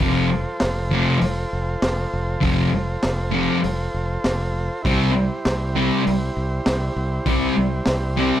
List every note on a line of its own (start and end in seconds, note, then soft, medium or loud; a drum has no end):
0.00 0.44 F1 medium
0.00 0.25 F2 medium
0.00 0.26 C3 loud
0.00 0.26 F3 loud
0.00 4.81 F4 medium
0.00 4.82 A4 medium
0.00 kick loud
0.00 open hi-hat medium
0.07 4.83 C5 medium
0.60 1.06 F1 medium
0.60 snare loud
0.60 open hi-hat medium
0.91 1.16 F2 medium
0.91 1.16 C3 loud
0.91 1.17 F3 loud
1.21 1.44 F1 medium
1.21 open hi-hat medium
1.53 1.75 F1 medium
1.82 2.04 F1 medium
1.82 snare loud
1.82 open hi-hat medium
2.14 2.35 F1 medium
2.41 2.65 F1 medium
2.41 2.66 F2 medium
2.41 2.67 C3 medium
2.41 2.67 F3 medium
2.41 kick loud
2.41 open hi-hat medium
2.74 2.95 F1 medium
3.03 3.48 F1 medium
3.03 snare loud
3.03 open hi-hat medium
3.31 3.57 F2 medium
3.31 3.57 C3 medium
3.31 3.58 F3 loud
3.64 3.86 F1 medium
3.64 open hi-hat medium
3.94 4.16 F1 medium
4.24 4.68 F1 medium
4.24 snare loud
4.24 open hi-hat medium
4.82 5.29 C2 loud
4.82 5.10 C3 medium
4.82 5.10 G3 medium
4.82 8.40 E4 medium
4.82 8.40 G4 medium
4.82 8.40 C5 medium
4.82 kick loud
4.82 open hi-hat medium
4.87 5.10 C4 loud
5.45 5.89 C2 medium
5.45 snare loud
5.45 open hi-hat soft
5.76 6.00 C3 medium
5.76 6.01 G3 medium
5.76 6.01 C4 loud
6.07 6.29 C2 medium
6.07 open hi-hat soft
6.37 6.58 C2 medium
6.66 6.88 C2 medium
6.66 snare loud
6.66 open hi-hat medium
6.96 7.18 C2 medium
7.26 7.48 C2 loud
7.26 7.51 C3 medium
7.26 7.52 G3 medium
7.26 7.52 C4 medium
7.26 kick loud
7.26 open hi-hat medium
7.58 7.79 C2 medium
7.86 8.31 C2 medium
7.86 snare loud
7.86 open hi-hat medium
8.17 8.40 C3 medium
8.17 8.40 G3 medium
8.17 8.40 C4 loud